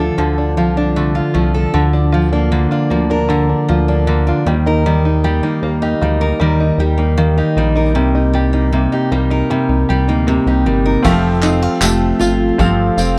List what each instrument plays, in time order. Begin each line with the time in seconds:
Already playing: analog synth bass D2, steel-string acoustic guitar D3 F3 D4 F4 A4, five-string banjo A3 F4
0.00 five-string banjo D4
0.18 analog synth bass D2, steel-string acoustic guitar D3, five-string banjo F3
0.38 five-string banjo D4
0.57 analog synth bass C2, steel-string acoustic guitar F3, five-string banjo F4
0.77 five-string banjo D4, steel-string acoustic guitar D4
0.96 steel-string acoustic guitar D3, five-string banjo A3
1.15 steel-string acoustic guitar F4, five-string banjo F4
1.34 analog synth bass C2, steel-string acoustic guitar F3, five-string banjo A3
1.54 five-string banjo D4, steel-string acoustic guitar A4
1.74 analog synth bass D2, steel-string acoustic guitar D3, five-string banjo D3
1.93 five-string banjo D4
2.12 steel-string acoustic guitar F3, five-string banjo F4
2.32 steel-string acoustic guitar A#3, five-string banjo D4
2.51 steel-string acoustic guitar D3, five-string banjo A#3
2.71 steel-string acoustic guitar D4, five-string banjo F4
2.90 analog synth bass D2, steel-string acoustic guitar F3, five-string banjo A#3
3.10 five-string banjo D4, steel-string acoustic guitar A#4
3.29 five-string banjo D3, steel-string acoustic guitar D3
3.49 five-string banjo D4
3.68 analog synth bass D2, steel-string acoustic guitar F3, five-string banjo F4
3.88 steel-string acoustic guitar A#3, five-string banjo D4
4.07 steel-string acoustic guitar D3, five-string banjo A#3
4.27 steel-string acoustic guitar D4, five-string banjo F4
4.46 analog synth bass D#2, steel-string acoustic guitar D#3, five-string banjo G3
4.66 five-string banjo D#4, steel-string acoustic guitar A#4
4.86 steel-string acoustic guitar D#3, five-string banjo G3
5.05 five-string banjo D#4
5.24 steel-string acoustic guitar G3, five-string banjo G4
5.43 steel-string acoustic guitar A#3, five-string banjo D#4
5.62 analog synth bass D#2, five-string banjo A#3
5.82 steel-string acoustic guitar D#4, five-string banjo G4
6.01 analog synth bass D2, steel-string acoustic guitar G3, five-string banjo A#3
6.21 five-string banjo D#4, steel-string acoustic guitar A#4
6.40 analog synth bass D#2, steel-string acoustic guitar D#3, five-string banjo G3
6.60 five-string banjo D#4
6.78 analog synth bass D#2, steel-string acoustic guitar G3, five-string banjo G4
6.98 steel-string acoustic guitar A#3, five-string banjo D#4
7.17 steel-string acoustic guitar D#3, five-string banjo A#3
7.38 steel-string acoustic guitar D#4, five-string banjo G4
7.57 analog synth bass A#1, steel-string acoustic guitar G3, five-string banjo A#3
7.75 five-string banjo D#4, steel-string acoustic guitar A#4
7.95 analog synth bass C2, steel-string acoustic guitar C3, five-string banjo G3
8.15 five-string banjo D#4
8.33 steel-string acoustic guitar G3, five-string banjo G4
8.53 steel-string acoustic guitar A#3, five-string banjo D#4
8.72 steel-string acoustic guitar C3, five-string banjo A#3
8.92 steel-string acoustic guitar D#4, five-string banjo G4
9.12 analog synth bass C2, steel-string acoustic guitar G3, five-string banjo A#3
9.30 five-string banjo D#4, steel-string acoustic guitar A#4
9.50 steel-string acoustic guitar C3, five-string banjo G3
9.69 analog synth bass C2, five-string banjo D#4
9.89 analog synth bass C2, steel-string acoustic guitar G3, five-string banjo G4
10.08 analog synth bass D2, steel-string acoustic guitar A#3, five-string banjo D#4
10.27 steel-string acoustic guitar C3, five-string banjo A#3
10.46 analog synth bass C2, steel-string acoustic guitar D#4, five-string banjo G4
10.65 analog synth bass G1, steel-string acoustic guitar G3, five-string banjo A#3
10.86 five-string banjo D#4, steel-string acoustic guitar A#4
11.03 analog synth bass F1, steel-string acoustic guitar F3, five-string banjo A3 G4, grand piano C4 F4 G4 A4 F5, kick, crash, tambourine
11.43 steel-string acoustic guitar C4, five-string banjo D#4, clap, tambourine
11.62 five-string banjo F4
11.81 analog synth bass F1, steel-string acoustic guitar A3, five-string banjo G4, clap, tambourine
12.19 analog synth bass G1, steel-string acoustic guitar F4, five-string banjo F4, tambourine
12.58 analog synth bass G1, steel-string acoustic guitar F3, grand piano C4 F4 G4 A4 F5, five-string banjo C4, kick, tambourine
12.97 analog synth bass F1, steel-string acoustic guitar C4, five-string banjo F4, tambourine